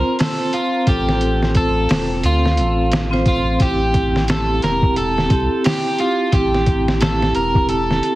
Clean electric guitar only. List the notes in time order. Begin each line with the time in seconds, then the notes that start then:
Already playing: A#4
0.20 A4
0.54 F4
0.88 G4
1.57 A4
2.26 F4
3.28 F4
3.62 G4
4.30 A4
4.64 A#4
4.97 A4
5.65 G4
6.00 F4
6.33 G4
7.02 A4
7.35 A#4
7.69 A4